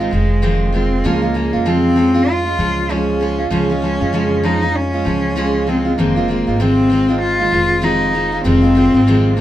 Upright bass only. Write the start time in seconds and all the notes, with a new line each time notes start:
0.13 F1
1.05 C#2
1.55 F2
2.59 C#2
3.52 C#2
4.01 F2
5.06 C#2
5.99 F1
6.48 G#1
7.53 F1
8.45 F1
8.94 G#1